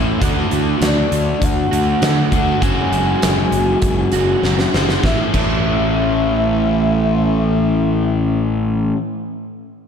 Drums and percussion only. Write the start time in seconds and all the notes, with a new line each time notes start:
0.22 kick, closed hi-hat
0.51 closed hi-hat
0.82 snare, closed hi-hat
1.12 closed hi-hat
1.42 kick, closed hi-hat
1.73 closed hi-hat
2.02 snare, closed hi-hat
2.32 kick, closed hi-hat
2.62 kick, closed hi-hat
2.93 closed hi-hat
3.22 snare, closed hi-hat
3.52 closed hi-hat
3.82 kick, closed hi-hat
4.12 closed hi-hat
4.43 snare
4.59 snare
4.74 snare
4.89 snare
5.03 kick, snare
5.34 kick, crash